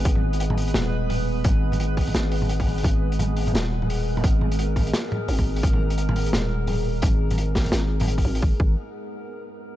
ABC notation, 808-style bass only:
X:1
M:4/4
L:1/8
Q:"Swing 16ths" 1/4=172
K:G#m
V:1 name="808-style bass" clef=bass
G,,,4 D,,,4 | G,,,4 G,,,4 | G,,,4 D,,,4 | G,,,4 z2 G,,,2 |
G,,,4 D,,,4 | G,,,4 G,,,3 G,,, | G,,, G,,, z6 |]